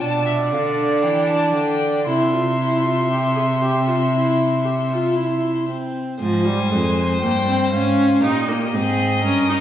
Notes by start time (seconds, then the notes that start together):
0.00 B2 D4 D5 A5
0.26 E5
0.52 D3 F5
1.02 E3 G5
1.27 A5
1.54 D3 G5
2.06 C3 E4 E5 C6
2.33 F4
2.58 E4
2.83 F4
3.10 G4
3.35 G#4
3.62 G4
3.87 F4
4.13 E4
4.65 G4
4.91 F4
5.17 E4
5.69 C4
6.19 G#2 F3 C5 G#5
6.46 G3
6.71 F2 G#3
7.21 G2 A#3 G5
7.48 C4
7.72 G#2 C#4 F5
8.22 A#2 D#4 G4 D#5
8.49 A#3
8.73 G#2 C4 G#4
9.24 G2 C#4 A#4
9.49 D#4